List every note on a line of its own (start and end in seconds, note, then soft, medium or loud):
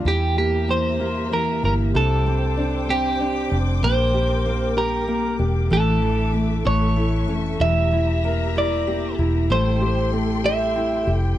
0.00 0.11 A3 medium
0.04 1.59 E2 medium
0.04 0.67 E3 soft
0.04 0.36 G3 medium
0.04 1.62 E4 medium
0.04 1.93 G4 medium
0.04 0.37 G4 medium
0.04 1.92 E5 medium
0.04 1.93 A#5 medium
0.37 1.00 G3 soft
0.37 0.98 A#3 soft
0.37 0.70 G4 medium
0.68 1.30 E3 soft
0.68 1.31 A#3 soft
0.68 1.33 C5 medium
1.00 1.94 G3 soft
1.00 1.61 A#3 soft
1.31 1.93 E3 soft
1.31 2.01 A#3 soft
1.31 1.62 A#4 medium
1.63 1.93 G1 medium
1.63 1.94 A#3 soft
1.63 1.95 E4 medium
1.63 1.74 A#4 medium
1.94 3.48 C2 medium
1.94 3.79 C3 soft
1.94 2.26 G3 medium
1.94 3.50 D4 medium
1.94 2.93 A4 medium
1.94 3.81 C5 medium
1.94 5.67 G5 medium
1.94 5.67 D6 medium
2.26 2.88 G3 soft
2.26 2.87 C4 soft
2.57 3.19 C4 soft
2.57 3.19 D4 soft
2.88 3.81 G3 soft
2.88 3.50 C4 medium
2.88 3.56 G4 medium
3.20 3.89 C4 soft
3.20 3.81 D4 soft
3.51 3.81 F1 medium
3.51 3.82 C4 soft
3.51 3.83 D4 soft
3.82 5.36 A#1 medium
3.82 4.13 G3 medium
3.82 4.44 A#3 soft
3.82 5.38 D4 medium
3.82 5.69 A#4 medium
3.82 4.74 C5 medium
4.14 4.75 G3 medium
4.14 4.75 G4 soft
4.46 5.06 A#3 medium
4.46 5.07 A#3 soft
4.76 5.70 G3 soft
4.76 5.38 G4 medium
4.76 5.36 A#4 medium
5.08 5.77 A#3 soft
5.08 5.69 A#3 soft
5.39 5.69 E1 medium
5.39 5.70 D4 medium
5.39 5.70 G4 soft
5.70 6.62 A1 medium
5.70 6.01 E3 medium
5.70 6.32 A3 medium
5.70 6.72 D4 medium
5.70 7.59 A4 medium
5.70 6.31 A4 medium
5.70 6.64 E5 medium
5.70 6.65 D6 medium
6.02 6.64 E3 medium
6.02 6.64 E4 soft
6.34 6.64 A3 soft
6.34 6.72 A3 soft
6.65 7.29 A1 medium
6.65 7.59 E3 medium
6.65 7.27 A3 medium
6.65 7.33 C#5 medium
6.65 9.47 E5 medium
6.65 7.59 C#6 medium
6.96 7.66 A3 soft
6.96 7.59 E4 soft
7.28 7.59 F1 medium
7.28 7.59 A3 soft
7.28 7.60 C#4 medium
7.59 9.15 E1 medium
7.59 9.46 E3 soft
7.59 7.92 G3 medium
7.59 9.18 E4 medium
7.59 9.48 G4 medium
7.59 8.58 E5 medium
7.59 9.48 A#5 medium
7.92 8.55 G3 soft
7.92 8.54 E4 soft
8.24 8.86 A#3 medium
8.24 9.47 A#4 soft
8.56 9.49 G3 soft
8.56 9.18 E4 soft
8.56 9.16 D5 medium
8.87 9.56 A#3 soft
8.87 9.48 G4 soft
9.19 9.48 E1 medium
9.19 9.50 E4 medium
9.19 9.49 E4 soft
9.50 11.03 A1 medium
9.50 9.81 G3 medium
9.50 10.12 A3 medium
9.50 11.06 E4 medium
9.50 11.36 A4 medium
9.50 10.10 C5 medium
9.50 11.38 G5 medium
9.50 11.36 C6 medium
9.82 10.44 G3 soft
9.82 10.43 G4 soft
10.13 11.35 A3 soft
10.13 10.75 C4 medium
10.44 11.37 G3 medium
10.44 11.06 G4 medium
10.44 11.11 E5 medium
10.76 11.38 C4 medium
10.76 11.36 E4 soft
11.07 11.36 F1 medium
11.07 11.38 E4 medium
11.07 11.37 G4 soft